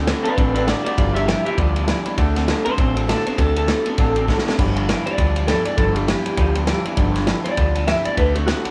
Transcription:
Already playing: D2
0.07 D3 A3 B3 C4 F#4 D5 F#5 A5, snare, ride
0.23 D3 B3 D4 F#4 B4 D5 F#5 A5, muted upright bass stroke, ride
0.28 A3 C4
0.36 A1 D3 A3 C4 D4 F#4 B4 D5 F#5 A5, kick, ride
0.54 D3 A3 C4 D4 F#4 B4 D5 F#5 A5, ride
0.67 D3 A3 B3 C4 F#4 D5 F#5 A5, snare, ride
0.84 D3 B3 C4 F#4 D5 F#5 A5, muted upright bass stroke, ride
0.88 A3
0.97 G1 G2 D3 F3 G3 B3 F4 G4 D5 G5 B5, kick, ride
1.14 G2 D3 F3 G3 B3 G4 D5 E5 G5 B5, ride
1.26 G2 D3 E3 F3 G3 B3 G4 E5 G5 B5, snare, ride
1.45 G2 E3 F3 G3 B3 G4 D5 E5 G5 B5, muted upright bass stroke, ride
1.58 D2 G2 F3 G3 B3 G4 D5 G5 B5, kick, ride
1.75 G2 F3 G3 B3 G4 D5 G5 B5, ride
1.88 G2 D3 E3 F3 G3 B3 G4 D5 G5 B5, snare, ride
2.06 G2 E3 F3 G3 B3 G4 D5 G5 B5, muted upright bass stroke, ride
2.18 D2 D3 A3 C4 F#4 D5 F#5 A5, kick, ride
2.34 D3 A3 C4 F#4 D5 F#5 A5, snare, ride
2.47 D3 A3 B3 C4 F#4 D5 F#5 A5, snare, ride
2.65 D3 A3 B3 C4 F#4 C5 D5 F#5 A5, muted upright bass stroke, ride
2.78 A1 D3 A3 C4 F#4 D5 F#5 A5, kick, ride
2.95 D3 A3 C4 F#4 D5 F#5 A5, ride
3.07 D3 A3 B3 C4 F#4 A4 D5 F#5 A5, snare, ride
3.25 D3 A3 B3 C4 F#4 C5 D5 F#5 A5, muted upright bass stroke, ride
3.37 D2 D3 A3 C4 F#4 A4 D5 F#5 A5, kick, ride
3.56 D3 A3 C4 F#4 A4 D5 F#5 A5, ride
3.68 D3 A3 B3 C4 F#4 D5 F#5, snare, ride
3.86 D3 A3 B3 C4 F#4 D5 F#5 A5, muted upright bass stroke, ride
3.98 A1 D3 A3 C4 F#4 D5 F#5 A5, kick, ride
4.15 D3 A3 C4 F#4 D5 F#5 A5, ride
4.28 D3 A3 B3 C4 F#4 D5 F#5 A5, kick, snare
4.38 snare
4.46 D3 A3 B3 C4 F#4 D5 F#5 A5, muted upright bass stroke, snare
4.58 G1 G2 D3 F3 G3 B3 G4 D5 G5 B5, kick, ride, crash
4.76 G2 D3 F3 G3 B3 G4 D5 G5 B5, ride
4.88 G2 D3 E3 F3 G3 B3 G4 D5 G5 B5, snare, ride
5.06 G2 E3 F3 G3 B3 G4 D5 G5 B5, muted upright bass stroke, ride
5.18 D2 G2 F3 G3 B3 G4 D5 G5 B5, kick, ride
5.36 G2 F3 G3 B3 G4 D5 G5 B5, ride
5.47 G2 D3 E3 F3 G3 B3 G4 A4 D5 G5 B5, snare, ride
5.65 G2 E3 F3 G3 B3 G4 D5 G5 B5, muted upright bass stroke, ride
5.77 G1 G2 D3 F3 G3 B3 G4 A4 D5 G5 B5, kick, ride
5.95 G2 D3 F3 G3 B3 G4 D5 G5 B5, ride
6.08 G2 D3 E3 F3 G3 B3 G4 G5, snare, ride
6.25 G2 E3 F3 G3 B3 G4 D5 G5 B5, muted upright bass stroke, ride
6.37 D2 G2 F3 G3 B3 G4 D5 G5 B5, kick, ride
6.55 G2 F3 G3 B3 G4 D5 G5 B5, ride
6.67 G2 D3 E3 F3 G3 B3 G4 D5 G5 B5, snare, ride
6.85 G2 E3 F3 G3 B3 G4 D5 G5 B5, muted upright bass stroke, ride
6.97 G1 G2 D3 F3 G3 B3 G4 D5 G5 B5, kick, ride
7.15 G2 D3 F3 G3 B3 G4 D5 G5 B5, snare, ride
7.27 G2 D3 E3 F3 G3 B3 G4 D5 G5 B5, snare, ride
7.44 G2 E3 F3 G3 B3 G4 D5 G5 B5, muted upright bass stroke, ride
7.57 D2 G2 F3 G3 B3 G4 D5 G5 B5, kick, ride
7.75 G2 F3 G3 B3 G4 D5 G5 B5, ride
7.87 G2 D3 E3 F3 G3 B3 G4 E5 G5 B5, snare, ride
8.05 G2 E3 F3 G3 B3 G4 D5 G5 B5, muted upright bass stroke, ride
8.17 D2 D3 A3 C4 F#4 B4 D5 F#5 A5, kick, ride
8.35 D3 A3 C4 F#4 D5 F#5 A5, ride
8.47 D3 A3 B3 C4 F#4 F#5 A5, snare, ride
8.64 D3 A3 B3 C4 F#4 D5 F#5 A5, muted upright bass stroke, ride

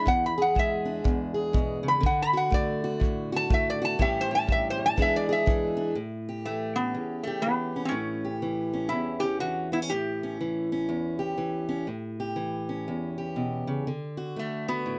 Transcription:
Already playing: E4
0.06 E2 F#5, kick
0.26 B5
0.38 G#4
0.42 F#5
0.55 G#3, kick
0.59 E5
0.85 D4
1.04 E2, kick
1.34 G#4
1.53 B2, kick
1.83 C#3
1.88 B5
2.01 D3, kick
2.06 F#5
2.22 B5
2.33 F#4 F#5
2.50 A3 D5, kick
2.84 F#4
3.00 A2, kick
3.32 F#4
3.36 A5
3.50 A3 E5, kick
3.70 D5
3.82 F#4 A5
3.99 A2 E3 G3 C#4 G4 E5, kick
4.21 C5
4.31 G4
4.35 A5
4.47 G2, kick
4.52 E5
4.70 C5
4.78 F#2
4.86 A5
4.96 E2 E3 G#3 D4 G#4, kick
5.02 E5
5.16 D5
5.29 G#4 E5
5.46 E3, kick
5.77 D4
5.95 A2
6.29 G4
6.45 E3 A3
6.76 B3 C#4
6.94 E2
7.23 A3 G4
7.42 B3
7.46 E3
7.76 C#4
7.85 C4 C#4
7.91 A2
8.25 G4
8.42 E3
8.74 C#4
8.89 E2 E4
9.20 C#4 G4
9.40 E3 F#4
9.72 B3 E4
9.82 C#4
9.89 A2 G4
10.23 C#4
10.41 E3
10.72 C#4
10.89 E2
11.19 G4
11.38 E3
11.69 C#4
11.87 A2
12.20 G4
12.36 E3
12.69 C#4
12.88 E2
13.18 G4
13.36 B2
13.67 C#3
13.87 D3
14.17 F#4
14.36 A3
14.68 B3 F#4
14.86 A2

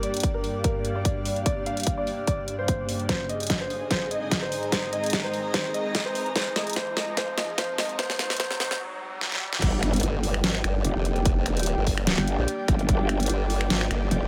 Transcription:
Already playing: G2 G3 A#3 D4 G4 D5 G5, riser
0.03 D5, closed hi-hat
0.14 F5, closed hi-hat
0.17 closed hi-hat
0.20 closed hi-hat
0.23 kick, closed hi-hat
0.34 A#4
0.44 open hi-hat
0.64 A#4, kick, closed hi-hat
0.85 closed hi-hat
0.95 D5
1.05 kick, closed hi-hat
1.25 open hi-hat
1.36 closed hi-hat
1.46 D5, kick, closed hi-hat
1.66 F5, closed hi-hat
1.77 closed hi-hat
1.80 closed hi-hat
1.83 closed hi-hat
1.87 kick, closed hi-hat
1.98 D5
2.07 open hi-hat
2.27 D5, kick, closed hi-hat
2.48 closed hi-hat
2.59 C5
2.68 kick, closed hi-hat
2.89 open hi-hat
3.00 closed hi-hat
3.09 G#2 G#3 C4 D#4 G#4 C5 D#5, kick, snare, closed hi-hat
3.26 D#5, closed hi-hat
3.40 closed hi-hat
3.43 closed hi-hat
3.47 snare, closed hi-hat
3.50 kick, closed hi-hat
3.61 C5
3.70 open hi-hat
3.87 C5 A#5, kick, snare, closed hi-hat
4.11 D#5, closed hi-hat
4.31 kick, snare, closed hi-hat
4.42 C5
4.52 open hi-hat
4.63 closed hi-hat
4.72 C5, kick, snare, closed hi-hat
4.93 D#5, closed hi-hat
5.04 closed hi-hat
5.06 closed hi-hat
5.10 snare, closed hi-hat
5.13 kick, closed hi-hat
5.24 C5
5.34 open hi-hat
5.54 C5, kick, snare, closed hi-hat
5.74 D#5, closed hi-hat
5.95 kick, snare, closed hi-hat
6.06 C5
6.15 open hi-hat
6.26 closed hi-hat
6.36 C5, kick, snare, closed hi-hat
6.56 D#5, snare, closed hi-hat
6.67 closed hi-hat
6.70 closed hi-hat
6.73 C5, snare, closed hi-hat
6.76 kick, closed hi-hat
6.97 D#5, snare, open hi-hat
7.17 C5, kick, snare, closed hi-hat
7.38 D#5, snare, closed hi-hat
7.58 C5, kick, snare, closed hi-hat
7.78 D#5, snare, open hi-hat
7.89 closed hi-hat
7.99 C5, kick, snare, closed hi-hat
8.10 snare
8.19 C5, snare, closed hi-hat
8.30 snare, closed hi-hat
8.33 closed hi-hat
8.37 C5, kick, snare, closed hi-hat
8.40 closed hi-hat
8.51 snare
8.60 C5, snare, open hi-hat
8.71 snare
9.21 snare
9.32 snare
9.53 snare
9.62 G1 G3 A#3 D4 G4, kick, closed hi-hat, crash, impact
9.77 D5 G5
9.83 finger snap, closed hi-hat
9.93 closed hi-hat
9.96 closed hi-hat
10.00 G1, closed hi-hat
10.03 closed hi-hat
10.23 open hi-hat
10.34 finger snap
10.44 G#1, snare, closed hi-hat
10.55 finger snap
10.64 G1, finger snap, closed hi-hat
10.85 F1, closed hi-hat
10.96 F1
11.05 closed hi-hat
11.16 closed hi-hat
11.25 kick, closed hi-hat
11.46 finger snap, closed hi-hat
11.52 E1
11.57 closed hi-hat
11.59 closed hi-hat
11.63 closed hi-hat
11.66 closed hi-hat
11.77 G1
11.87 kick, open hi-hat
11.98 finger snap
12.07 snare, closed hi-hat
12.18 G1, finger snap
12.28 closed hi-hat
12.38 A#1
12.48 closed hi-hat
12.68 G1, finger snap, kick, closed hi-hat
12.79 closed hi-hat
12.89 G1, kick, closed hi-hat
13.09 finger snap, closed hi-hat
13.20 closed hi-hat
13.23 closed hi-hat
13.26 closed hi-hat
13.29 G1, closed hi-hat
13.50 open hi-hat
13.61 finger snap
13.70 G#1, snare, closed hi-hat
13.81 finger snap
13.91 G1, finger snap, closed hi-hat
14.11 F1, closed hi-hat
14.22 F1

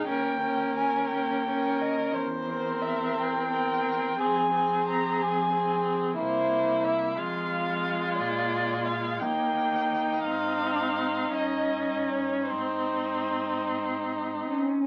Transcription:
0.07 D#2 C#4 A#4 G5
0.43 C#4 A#4
0.77 G#5
1.10 D#2 G5
1.49 C#4 A#4
1.81 D#5
2.14 E2 C5
2.49 C4 A#4
2.82 E5
3.18 E2 G5
3.51 C4 A#4
4.19 F2 C4 G#4 G#5
4.53 C4 G#4
4.88 A#5
5.21 F2 G#5
5.52 C4 G#4
6.18 C2 A#3 E4 C5
6.84 E5
7.17 F2 G#3 F4 F5
8.19 A#2 D5
8.86 F5
9.20 D#2 A#3 D#4 G5
10.25 G#2 C4 F5
11.34 G2 C#4 D#5
12.10 C#5
12.49 G#2 C4 D#4 C5
14.47 C#4

